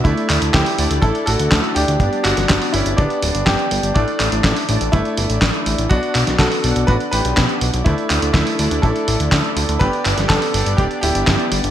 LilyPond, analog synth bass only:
\new Staff \with { instrumentName = "Analog synth bass" } { \clef bass \time 4/4 \key d \major \tempo 4 = 123 d,16 r16 d,16 d,16 d,16 r16 d,16 d,16 a,,16 r16 a,,16 d,16 d,16 r16 d,16 d,16 | g,,16 r16 g,,16 g,,16 g,,16 r16 g,,16 g,,16 d,,16 r16 d,,16 g,,16 g,,16 r16 g,,16 g,,16 | a,,16 r16 a,,16 a,,16 a,,16 r16 a,,16 a,,16 g,,16 r16 g,,16 a,,16 a,,16 r16 a,,16 a,,16 | b,,16 r16 b,,16 b,,16 b,,16 r16 b,,16 b,,16 a,,16 r16 a,,16 b,,16 b,,16 r16 b,,16 b,,16 |
d,16 r16 d,16 d,16 d,16 r16 d,16 d,16 a,,16 r16 a,,16 d,16 d,16 r16 d,16 d,16 | g,,16 r16 g,,16 g,,16 g,,16 r16 g,,16 g,,16 d,,16 r16 d,,16 g,,16 g,,16 r16 g,,16 g,,16 | }